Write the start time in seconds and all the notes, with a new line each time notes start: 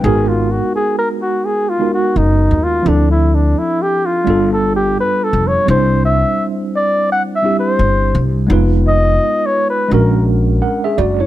Already playing: B4 G5
0.01 G#1 G#3 B3 D#4 G#4
0.06 F#4 A#4
0.28 F4
0.51 F#4
0.76 G#4
0.98 A#4
1.22 F#4
1.45 G#4
1.69 F4
1.79 G#3 B3 D#4 F#4 A#4
1.93 F#4
2.16 F#1 D#4
2.51 D#2
2.64 F4
2.82 D2 F3 C4 D4
2.87 D4 E4 A4
3.11 E4
3.35 D4
3.58 E4
3.82 G4
4.06 F4
4.24 G1 G3 B3 D4
4.29 F4 A4
4.53 A4
4.76 G4
5.00 B4
5.23 A4
5.33 F1
5.47 C#5
5.65 C2 G3 C4 D4
5.70 E4 C5
6.05 E5
6.76 D5
7.12 F#5
7.35 E5
7.42 G3 C4 D4 E4 G4
7.59 C5
7.79 G1
8.15 C2
8.47 F1 G#3 B3 D#4
8.51 F4 B4
8.88 D#5
9.46 C#5
9.70 B4
9.88 A#1 G#3 C#4 D4
9.93 F#4 A#4
10.62 A#4 F#5
10.84 G#4 E5
10.98 F#1 F#4 D5
11.20 E4 C#5